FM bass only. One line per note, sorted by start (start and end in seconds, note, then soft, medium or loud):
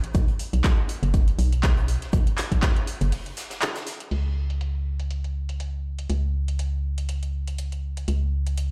0.15 0.26 B1 loud
0.53 0.62 B1 medium
1.03 1.35 F#1 loud
1.39 1.98 B1 loud
2.13 2.24 B1 loud
2.52 2.60 B1 medium
3.01 3.12 F#1 loud
4.11 6.08 C#2 medium
6.10 8.06 C#2 medium
8.08 8.71 C#2 medium